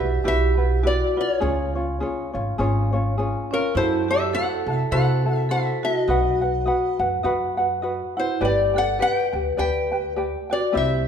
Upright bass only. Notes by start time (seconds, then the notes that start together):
0.00 B1
0.25 B1
1.42 C#2
2.35 G#1
2.59 G#1
3.75 F#2
4.66 C3
4.92 C3
6.08 B1
6.99 F#2
7.24 F#2
8.41 G1
9.33 D2
9.58 D2
10.75 C2